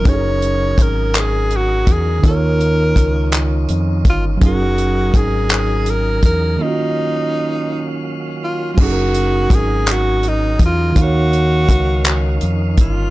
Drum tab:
CC |------|------|------|------|
HH |xxxxxx|xxxxxx|xxxxxx|------|
CP |---x--|---x--|---x--|------|
BD |o-o--o|o-o--o|o-o--o|------|

CC |x-----|------|
HH |-xxxxx|xxxxxx|
CP |---x--|---x--|
BD |o-o--o|o-o--o|